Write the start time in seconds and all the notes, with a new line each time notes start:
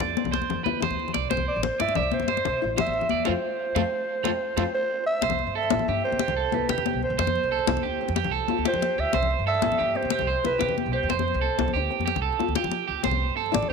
0.00 F2 D4 D5, low conga
0.09 low conga
0.17 C4, high conga
0.24 C2, low conga
0.32 C5, muted conga
0.42 high conga
0.50 F2, low conga
0.64 D2 E4 B4, high conga
0.80 E4 C5, muted conga, low conga
0.90 D2, high conga
0.99 low conga
1.08 low conga
1.14 C2 D5, high conga
1.30 C2 C4 C5, muted conga
1.37 high conga, low conga
1.48 D5
1.56 A1
1.63 C5, high conga, low conga
1.80 G2 E4 D5 E5, muted conga, low conga
1.88 high conga
1.95 C2 D5 E5, low conga
2.03 low conga
2.12 C4 C5, high conga
2.20 G2, low conga
2.28 C5, muted conga
2.37 high conga
2.45 C2, low conga
2.62 A1 E4
2.77 E4 C5 E5, muted conga, low conga
2.87 A1, high conga
2.94 low conga
3.01 low conga
3.09 E2 D5, high conga
3.25 F2 A3 C4 F4 A4 C5 F5, muted conga
3.75 F2 A3 C4 F4 A4 C5 F5, muted conga
4.24 F2 A3 C4 F4 A4 C5 F5, muted conga
4.57 F2 A3 C4 F4 A4 C5 F5, muted conga
4.74 C5
5.07 E5
5.22 C2 C4 C5, muted conga
5.30 high conga, low conga
5.39 low conga
5.47 G2
5.55 A4 E5
5.63 low conga
5.70 A1 E4, muted conga, high conga
5.79 low conga
5.88 G2 D4 G4
6.04 C4 C5
6.12 C3, high conga
6.19 G4, muted conga, low conga
6.28 C2, low conga
6.37 A4
6.52 C2 E4 B4, high conga
6.69 C3 G4, muted nylon-string guitar stroke, muted conga
6.78 low conga
6.86 high conga
6.93 C2
7.03 C5, low conga
7.10 C2
7.18 F2 C4 C5, muted conga
7.27 high conga, low conga
7.35 low conga
7.43 C2
7.52 A4
7.59 low conga
7.67 C2 E4, muted conga, high conga
7.77 low conga
7.83 D2 D4 G4
8.01 C4
8.08 F2, high conga
8.16 G4, muted conga, low conga
8.24 C2, low conga
8.31 A4
8.48 F4, high conga
8.58 D2
8.65 F4 G4 C5, muted conga
8.74 F3, low conga
8.82 high conga
8.98 D2 G4 E5, low conga
9.13 C2 C4 C5, muted conga
9.23 low conga
9.30 low conga
9.39 G2
9.47 A4 E5
9.54 low conga
9.62 A1 E4, muted conga, high conga
9.72 low conga
9.79 G2 D4 G4
9.95 C4 C5
10.03 C3, high conga
10.10 G4, muted conga, low conga
10.19 C2, low conga
10.27 C5
10.44 C2 E4 B4, high conga
10.59 C3 E4 G4, muted conga
10.69 low conga
10.78 high conga
10.86 C2
10.93 G4 C5, low conga
11.03 E2
11.09 F2 C4 C5, muted conga, low conga
11.19 high conga, low conga
11.28 low conga
11.34 C2, low conga
11.41 A4
11.58 C2 E4, muted conga, high conga
11.68 low conga
11.74 D2 D4 G4, low conga
11.91 C4, low conga
11.99 F2, high conga, low conga
12.06 G4, muted conga
12.16 C2, low conga
12.22 A4
12.33 low conga
12.39 F4, high conga
12.48 D2, low conga
12.55 F4 G4, muted conga, low conga
12.64 F3, low conga
12.71 high conga, low conga
12.88 C#2 G4
13.04 C2 C4 C5, muted conga
13.11 high conga, low conga
13.20 low conga
13.29 G2
13.37 A4
13.46 low conga
13.52 A1 E4 D5, muted conga, high conga
13.62 low conga
13.69 G2 G4 C5